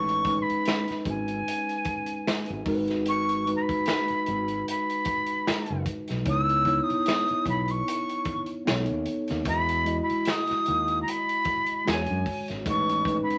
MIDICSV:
0, 0, Header, 1, 6, 480
1, 0, Start_track
1, 0, Key_signature, 4, "minor"
1, 0, Tempo, 800000
1, 1835, Time_signature, 4, 2, 24, 8
1, 8029, End_track
2, 0, Start_track
2, 0, Title_t, "Flute"
2, 0, Program_c, 0, 73
2, 0, Note_on_c, 0, 85, 117
2, 250, Note_on_c, 0, 83, 91
2, 259, Note_off_c, 0, 85, 0
2, 563, Note_off_c, 0, 83, 0
2, 653, Note_on_c, 0, 80, 85
2, 1580, Note_off_c, 0, 80, 0
2, 1849, Note_on_c, 0, 85, 114
2, 2104, Note_off_c, 0, 85, 0
2, 2134, Note_on_c, 0, 82, 70
2, 2169, Note_on_c, 0, 83, 93
2, 2178, Note_off_c, 0, 82, 0
2, 2802, Note_off_c, 0, 83, 0
2, 2813, Note_on_c, 0, 83, 94
2, 3500, Note_off_c, 0, 83, 0
2, 3776, Note_on_c, 0, 88, 111
2, 4095, Note_on_c, 0, 87, 99
2, 4104, Note_off_c, 0, 88, 0
2, 4485, Note_off_c, 0, 87, 0
2, 4493, Note_on_c, 0, 83, 79
2, 4623, Note_on_c, 0, 85, 93
2, 4632, Note_off_c, 0, 83, 0
2, 5095, Note_off_c, 0, 85, 0
2, 5690, Note_on_c, 0, 83, 100
2, 5981, Note_off_c, 0, 83, 0
2, 6014, Note_on_c, 0, 83, 89
2, 6174, Note_on_c, 0, 87, 115
2, 6183, Note_off_c, 0, 83, 0
2, 6607, Note_off_c, 0, 87, 0
2, 6612, Note_on_c, 0, 82, 74
2, 6654, Note_on_c, 0, 83, 118
2, 6663, Note_off_c, 0, 82, 0
2, 7125, Note_off_c, 0, 83, 0
2, 7138, Note_on_c, 0, 80, 84
2, 7474, Note_off_c, 0, 80, 0
2, 7616, Note_on_c, 0, 85, 101
2, 7904, Note_off_c, 0, 85, 0
2, 7936, Note_on_c, 0, 83, 86
2, 8029, Note_off_c, 0, 83, 0
2, 8029, End_track
3, 0, Start_track
3, 0, Title_t, "Tine electric piano"
3, 0, Program_c, 1, 4
3, 0, Note_on_c, 1, 56, 72
3, 0, Note_on_c, 1, 61, 62
3, 0, Note_on_c, 1, 63, 60
3, 0, Note_on_c, 1, 71, 75
3, 40, Control_c, 1, 64, 127
3, 117, Note_off_c, 1, 56, 0
3, 119, Note_off_c, 1, 61, 0
3, 122, Note_off_c, 1, 63, 0
3, 125, Note_off_c, 1, 71, 0
3, 155, Note_on_c, 1, 56, 82
3, 161, Note_on_c, 1, 61, 77
3, 165, Note_on_c, 1, 63, 73
3, 171, Note_on_c, 1, 71, 84
3, 958, Note_off_c, 1, 56, 0
3, 961, Note_off_c, 1, 61, 0
3, 963, Note_off_c, 1, 63, 0
3, 966, Note_off_c, 1, 71, 0
3, 1594, Note_on_c, 1, 56, 92
3, 1600, Note_on_c, 1, 63, 94
3, 1603, Note_on_c, 1, 66, 84
3, 1604, Control_c, 1, 64, 0
3, 1608, Note_on_c, 1, 70, 84
3, 1645, Note_off_c, 1, 70, 0
3, 1648, Note_on_c, 1, 71, 105
3, 1714, Control_c, 1, 64, 127
3, 2000, Note_off_c, 1, 56, 0
3, 2003, Note_off_c, 1, 63, 0
3, 2005, Note_off_c, 1, 66, 0
3, 2027, Note_off_c, 1, 71, 0
3, 2073, Note_on_c, 1, 56, 78
3, 2076, Note_on_c, 1, 63, 72
3, 2081, Note_on_c, 1, 66, 69
3, 2089, Note_on_c, 1, 71, 94
3, 2877, Note_off_c, 1, 56, 0
3, 2878, Note_off_c, 1, 63, 0
3, 2881, Note_off_c, 1, 66, 0
3, 2885, Note_off_c, 1, 71, 0
3, 3752, Note_on_c, 1, 59, 70
3, 3756, Note_on_c, 1, 63, 63
3, 3761, Note_on_c, 1, 64, 61
3, 3763, Control_c, 1, 64, 0
3, 3768, Note_on_c, 1, 73, 81
3, 3881, Control_c, 1, 64, 127
3, 3956, Note_off_c, 1, 59, 0
3, 3958, Note_off_c, 1, 63, 0
3, 3961, Note_off_c, 1, 64, 0
3, 3964, Note_off_c, 1, 73, 0
3, 3989, Note_on_c, 1, 59, 76
3, 3995, Note_on_c, 1, 63, 72
3, 4002, Note_on_c, 1, 64, 74
3, 4006, Note_on_c, 1, 73, 81
3, 4795, Note_off_c, 1, 59, 0
3, 4798, Note_off_c, 1, 63, 0
3, 4801, Note_off_c, 1, 64, 0
3, 4803, Note_off_c, 1, 73, 0
3, 5192, Note_on_c, 1, 59, 77
3, 5197, Note_on_c, 1, 63, 76
3, 5202, Note_on_c, 1, 69, 84
3, 5203, Control_c, 1, 64, 0
3, 5209, Note_on_c, 1, 73, 94
3, 5318, Control_c, 1, 64, 127
3, 5599, Note_off_c, 1, 59, 0
3, 5602, Note_off_c, 1, 63, 0
3, 5604, Note_off_c, 1, 69, 0
3, 5608, Note_off_c, 1, 73, 0
3, 5673, Note_on_c, 1, 56, 64
3, 5678, Note_on_c, 1, 64, 63
3, 5682, Control_c, 1, 64, 0
3, 5684, Note_on_c, 1, 66, 65
3, 5689, Note_on_c, 1, 75, 80
3, 5792, Control_c, 1, 64, 127
3, 5877, Note_off_c, 1, 56, 0
3, 5879, Note_off_c, 1, 64, 0
3, 5883, Note_off_c, 1, 66, 0
3, 5885, Note_off_c, 1, 75, 0
3, 5910, Note_on_c, 1, 56, 80
3, 5916, Note_on_c, 1, 64, 78
3, 5919, Note_on_c, 1, 66, 74
3, 5924, Note_on_c, 1, 75, 85
3, 6716, Note_off_c, 1, 56, 0
3, 6718, Note_off_c, 1, 64, 0
3, 6720, Note_off_c, 1, 66, 0
3, 6722, Note_off_c, 1, 75, 0
3, 7111, Note_on_c, 1, 56, 73
3, 7117, Note_on_c, 1, 62, 68
3, 7121, Note_on_c, 1, 66, 64
3, 7124, Control_c, 1, 64, 0
3, 7127, Note_on_c, 1, 71, 67
3, 7164, Note_off_c, 1, 71, 0
3, 7166, Note_on_c, 1, 73, 83
3, 7232, Control_c, 1, 64, 127
3, 7519, Note_off_c, 1, 56, 0
3, 7522, Note_off_c, 1, 62, 0
3, 7524, Note_off_c, 1, 66, 0
3, 7546, Note_off_c, 1, 73, 0
3, 7591, Note_on_c, 1, 56, 67
3, 7598, Note_on_c, 1, 61, 62
3, 7602, Note_on_c, 1, 63, 63
3, 7604, Control_c, 1, 64, 0
3, 7606, Note_on_c, 1, 71, 76
3, 7695, Control_c, 1, 64, 127
3, 7796, Note_off_c, 1, 56, 0
3, 7800, Note_off_c, 1, 61, 0
3, 7802, Note_off_c, 1, 63, 0
3, 7803, Note_off_c, 1, 71, 0
3, 7826, Note_on_c, 1, 56, 73
3, 7833, Note_on_c, 1, 61, 69
3, 7839, Note_on_c, 1, 63, 73
3, 7843, Note_on_c, 1, 71, 96
3, 8029, Note_off_c, 1, 56, 0
3, 8029, Note_off_c, 1, 61, 0
3, 8029, Note_off_c, 1, 63, 0
3, 8029, Note_off_c, 1, 71, 0
3, 8029, End_track
4, 0, Start_track
4, 0, Title_t, "Fingered electric bass"
4, 0, Program_c, 2, 33
4, 0, Note_on_c, 2, 33, 116
4, 233, Note_off_c, 2, 33, 0
4, 638, Note_on_c, 2, 32, 88
4, 840, Note_off_c, 2, 32, 0
4, 1501, Note_on_c, 2, 32, 88
4, 1587, Note_off_c, 2, 32, 0
4, 1601, Note_on_c, 2, 32, 97
4, 2117, Note_off_c, 2, 32, 0
4, 2568, Note_on_c, 2, 32, 91
4, 2766, Note_off_c, 2, 32, 0
4, 3421, Note_on_c, 2, 30, 93
4, 3507, Note_off_c, 2, 30, 0
4, 3663, Note_on_c, 2, 35, 72
4, 3761, Note_off_c, 2, 35, 0
4, 3761, Note_on_c, 2, 37, 108
4, 4074, Note_off_c, 2, 37, 0
4, 4482, Note_on_c, 2, 35, 74
4, 4682, Note_off_c, 2, 35, 0
4, 5210, Note_on_c, 2, 35, 100
4, 5315, Note_off_c, 2, 35, 0
4, 5341, Note_on_c, 2, 39, 74
4, 5427, Note_off_c, 2, 39, 0
4, 5584, Note_on_c, 2, 39, 93
4, 5669, Note_off_c, 2, 39, 0
4, 5681, Note_on_c, 2, 40, 102
4, 5993, Note_off_c, 2, 40, 0
4, 6409, Note_on_c, 2, 39, 88
4, 6606, Note_off_c, 2, 39, 0
4, 7127, Note_on_c, 2, 40, 100
4, 7234, Note_off_c, 2, 40, 0
4, 7260, Note_on_c, 2, 42, 82
4, 7346, Note_off_c, 2, 42, 0
4, 7501, Note_on_c, 2, 32, 84
4, 7587, Note_off_c, 2, 32, 0
4, 7603, Note_on_c, 2, 33, 119
4, 7914, Note_off_c, 2, 33, 0
4, 8029, End_track
5, 0, Start_track
5, 0, Title_t, "Muted fingered electric bass strokes"
5, 300, Note_on_c, 9, 29, 51
5, 360, Note_off_c, 9, 29, 0
5, 542, Note_on_c, 9, 29, 44
5, 602, Note_off_c, 9, 29, 0
5, 1370, Note_on_c, 9, 29, 41
5, 1430, Note_off_c, 9, 29, 0
5, 2221, Note_on_c, 9, 29, 48
5, 2281, Note_off_c, 9, 29, 0
5, 2461, Note_on_c, 9, 29, 46
5, 2521, Note_off_c, 9, 29, 0
5, 3292, Note_on_c, 9, 29, 42
5, 3352, Note_off_c, 9, 29, 0
5, 4141, Note_on_c, 9, 29, 52
5, 4201, Note_off_c, 9, 29, 0
5, 4384, Note_on_c, 9, 29, 40
5, 4444, Note_off_c, 9, 29, 0
5, 6062, Note_on_c, 9, 29, 49
5, 6122, Note_off_c, 9, 29, 0
5, 6303, Note_on_c, 9, 29, 44
5, 6363, Note_off_c, 9, 29, 0
5, 7982, Note_on_c, 9, 29, 51
5, 8029, Note_off_c, 9, 29, 0
5, 8029, End_track
6, 0, Start_track
6, 0, Title_t, "Drums"
6, 52, Note_on_c, 9, 42, 49
6, 112, Note_off_c, 9, 42, 0
6, 149, Note_on_c, 9, 36, 97
6, 161, Note_on_c, 9, 42, 62
6, 209, Note_off_c, 9, 36, 0
6, 221, Note_off_c, 9, 42, 0
6, 298, Note_on_c, 9, 42, 43
6, 358, Note_off_c, 9, 42, 0
6, 393, Note_on_c, 9, 42, 76
6, 406, Note_on_c, 9, 38, 101
6, 411, Note_on_c, 9, 26, 81
6, 453, Note_off_c, 9, 42, 0
6, 466, Note_off_c, 9, 38, 0
6, 471, Note_off_c, 9, 26, 0
6, 527, Note_on_c, 9, 42, 44
6, 543, Note_on_c, 9, 38, 35
6, 587, Note_off_c, 9, 42, 0
6, 603, Note_off_c, 9, 38, 0
6, 632, Note_on_c, 9, 36, 83
6, 634, Note_on_c, 9, 42, 60
6, 692, Note_off_c, 9, 36, 0
6, 694, Note_off_c, 9, 42, 0
6, 767, Note_on_c, 9, 42, 43
6, 827, Note_off_c, 9, 42, 0
6, 888, Note_on_c, 9, 42, 99
6, 948, Note_off_c, 9, 42, 0
6, 1015, Note_on_c, 9, 42, 47
6, 1075, Note_off_c, 9, 42, 0
6, 1108, Note_on_c, 9, 42, 64
6, 1113, Note_on_c, 9, 36, 89
6, 1168, Note_off_c, 9, 42, 0
6, 1173, Note_off_c, 9, 36, 0
6, 1238, Note_on_c, 9, 42, 51
6, 1298, Note_off_c, 9, 42, 0
6, 1365, Note_on_c, 9, 38, 113
6, 1367, Note_on_c, 9, 42, 94
6, 1370, Note_on_c, 9, 26, 89
6, 1425, Note_off_c, 9, 38, 0
6, 1427, Note_off_c, 9, 42, 0
6, 1430, Note_off_c, 9, 26, 0
6, 1476, Note_on_c, 9, 42, 50
6, 1536, Note_off_c, 9, 42, 0
6, 1594, Note_on_c, 9, 36, 105
6, 1595, Note_on_c, 9, 46, 46
6, 1655, Note_off_c, 9, 36, 0
6, 1655, Note_off_c, 9, 46, 0
6, 1727, Note_on_c, 9, 42, 44
6, 1738, Note_on_c, 9, 38, 28
6, 1787, Note_off_c, 9, 42, 0
6, 1798, Note_off_c, 9, 38, 0
6, 1834, Note_on_c, 9, 42, 76
6, 1894, Note_off_c, 9, 42, 0
6, 1974, Note_on_c, 9, 42, 53
6, 2034, Note_off_c, 9, 42, 0
6, 2083, Note_on_c, 9, 42, 58
6, 2143, Note_off_c, 9, 42, 0
6, 2214, Note_on_c, 9, 36, 85
6, 2220, Note_on_c, 9, 42, 42
6, 2274, Note_off_c, 9, 36, 0
6, 2280, Note_off_c, 9, 42, 0
6, 2314, Note_on_c, 9, 42, 77
6, 2327, Note_on_c, 9, 38, 102
6, 2332, Note_on_c, 9, 26, 77
6, 2374, Note_off_c, 9, 42, 0
6, 2387, Note_off_c, 9, 38, 0
6, 2392, Note_off_c, 9, 26, 0
6, 2449, Note_on_c, 9, 42, 43
6, 2509, Note_off_c, 9, 42, 0
6, 2558, Note_on_c, 9, 42, 56
6, 2618, Note_off_c, 9, 42, 0
6, 2689, Note_on_c, 9, 42, 41
6, 2749, Note_off_c, 9, 42, 0
6, 2808, Note_on_c, 9, 42, 90
6, 2868, Note_off_c, 9, 42, 0
6, 2938, Note_on_c, 9, 42, 47
6, 2998, Note_off_c, 9, 42, 0
6, 3029, Note_on_c, 9, 42, 65
6, 3034, Note_on_c, 9, 36, 88
6, 3089, Note_off_c, 9, 42, 0
6, 3094, Note_off_c, 9, 36, 0
6, 3159, Note_on_c, 9, 42, 45
6, 3219, Note_off_c, 9, 42, 0
6, 3284, Note_on_c, 9, 38, 116
6, 3287, Note_on_c, 9, 42, 86
6, 3289, Note_on_c, 9, 26, 94
6, 3344, Note_off_c, 9, 38, 0
6, 3347, Note_off_c, 9, 42, 0
6, 3349, Note_off_c, 9, 26, 0
6, 3397, Note_on_c, 9, 42, 45
6, 3457, Note_off_c, 9, 42, 0
6, 3515, Note_on_c, 9, 36, 80
6, 3515, Note_on_c, 9, 42, 69
6, 3575, Note_off_c, 9, 36, 0
6, 3575, Note_off_c, 9, 42, 0
6, 3646, Note_on_c, 9, 42, 45
6, 3657, Note_on_c, 9, 38, 30
6, 3706, Note_off_c, 9, 42, 0
6, 3717, Note_off_c, 9, 38, 0
6, 3753, Note_on_c, 9, 42, 74
6, 3754, Note_on_c, 9, 36, 115
6, 3813, Note_off_c, 9, 42, 0
6, 3814, Note_off_c, 9, 36, 0
6, 3896, Note_on_c, 9, 42, 45
6, 3956, Note_off_c, 9, 42, 0
6, 3991, Note_on_c, 9, 36, 95
6, 4003, Note_on_c, 9, 42, 56
6, 4051, Note_off_c, 9, 36, 0
6, 4063, Note_off_c, 9, 42, 0
6, 4140, Note_on_c, 9, 42, 41
6, 4200, Note_off_c, 9, 42, 0
6, 4235, Note_on_c, 9, 42, 82
6, 4248, Note_on_c, 9, 38, 104
6, 4253, Note_on_c, 9, 26, 92
6, 4295, Note_off_c, 9, 42, 0
6, 4308, Note_off_c, 9, 38, 0
6, 4313, Note_off_c, 9, 26, 0
6, 4369, Note_on_c, 9, 42, 43
6, 4429, Note_off_c, 9, 42, 0
6, 4474, Note_on_c, 9, 36, 73
6, 4478, Note_on_c, 9, 42, 57
6, 4534, Note_off_c, 9, 36, 0
6, 4538, Note_off_c, 9, 42, 0
6, 4608, Note_on_c, 9, 42, 43
6, 4668, Note_off_c, 9, 42, 0
6, 4729, Note_on_c, 9, 42, 96
6, 4789, Note_off_c, 9, 42, 0
6, 4857, Note_on_c, 9, 42, 50
6, 4917, Note_off_c, 9, 42, 0
6, 4951, Note_on_c, 9, 42, 62
6, 4953, Note_on_c, 9, 36, 97
6, 5011, Note_off_c, 9, 42, 0
6, 5013, Note_off_c, 9, 36, 0
6, 5078, Note_on_c, 9, 42, 47
6, 5138, Note_off_c, 9, 42, 0
6, 5204, Note_on_c, 9, 38, 127
6, 5207, Note_on_c, 9, 42, 88
6, 5209, Note_on_c, 9, 26, 93
6, 5264, Note_off_c, 9, 38, 0
6, 5267, Note_off_c, 9, 42, 0
6, 5269, Note_off_c, 9, 26, 0
6, 5314, Note_on_c, 9, 42, 46
6, 5374, Note_off_c, 9, 42, 0
6, 5434, Note_on_c, 9, 42, 63
6, 5494, Note_off_c, 9, 42, 0
6, 5566, Note_on_c, 9, 42, 42
6, 5577, Note_on_c, 9, 38, 29
6, 5626, Note_off_c, 9, 42, 0
6, 5637, Note_off_c, 9, 38, 0
6, 5671, Note_on_c, 9, 42, 79
6, 5673, Note_on_c, 9, 36, 106
6, 5731, Note_off_c, 9, 42, 0
6, 5733, Note_off_c, 9, 36, 0
6, 5813, Note_on_c, 9, 42, 52
6, 5873, Note_off_c, 9, 42, 0
6, 5917, Note_on_c, 9, 42, 62
6, 5977, Note_off_c, 9, 42, 0
6, 6058, Note_on_c, 9, 42, 44
6, 6118, Note_off_c, 9, 42, 0
6, 6151, Note_on_c, 9, 42, 82
6, 6165, Note_on_c, 9, 38, 108
6, 6170, Note_on_c, 9, 26, 84
6, 6211, Note_off_c, 9, 42, 0
6, 6225, Note_off_c, 9, 38, 0
6, 6230, Note_off_c, 9, 26, 0
6, 6284, Note_on_c, 9, 42, 43
6, 6300, Note_on_c, 9, 38, 35
6, 6344, Note_off_c, 9, 42, 0
6, 6360, Note_off_c, 9, 38, 0
6, 6395, Note_on_c, 9, 42, 58
6, 6455, Note_off_c, 9, 42, 0
6, 6528, Note_on_c, 9, 42, 40
6, 6588, Note_off_c, 9, 42, 0
6, 6648, Note_on_c, 9, 42, 97
6, 6708, Note_off_c, 9, 42, 0
6, 6775, Note_on_c, 9, 42, 44
6, 6835, Note_off_c, 9, 42, 0
6, 6868, Note_on_c, 9, 42, 62
6, 6872, Note_on_c, 9, 36, 98
6, 6928, Note_off_c, 9, 42, 0
6, 6932, Note_off_c, 9, 36, 0
6, 6998, Note_on_c, 9, 42, 47
6, 7058, Note_off_c, 9, 42, 0
6, 7125, Note_on_c, 9, 38, 118
6, 7127, Note_on_c, 9, 42, 88
6, 7130, Note_on_c, 9, 26, 96
6, 7185, Note_off_c, 9, 38, 0
6, 7187, Note_off_c, 9, 42, 0
6, 7190, Note_off_c, 9, 26, 0
6, 7238, Note_on_c, 9, 42, 49
6, 7298, Note_off_c, 9, 42, 0
6, 7355, Note_on_c, 9, 36, 81
6, 7359, Note_on_c, 9, 46, 48
6, 7415, Note_off_c, 9, 36, 0
6, 7419, Note_off_c, 9, 46, 0
6, 7488, Note_on_c, 9, 42, 44
6, 7499, Note_on_c, 9, 38, 30
6, 7548, Note_off_c, 9, 42, 0
6, 7559, Note_off_c, 9, 38, 0
6, 7595, Note_on_c, 9, 36, 109
6, 7597, Note_on_c, 9, 42, 85
6, 7655, Note_off_c, 9, 36, 0
6, 7657, Note_off_c, 9, 42, 0
6, 7737, Note_on_c, 9, 42, 53
6, 7797, Note_off_c, 9, 42, 0
6, 7831, Note_on_c, 9, 36, 91
6, 7846, Note_on_c, 9, 42, 59
6, 7891, Note_off_c, 9, 36, 0
6, 7906, Note_off_c, 9, 42, 0
6, 7982, Note_on_c, 9, 42, 41
6, 8029, Note_off_c, 9, 42, 0
6, 8029, End_track
0, 0, End_of_file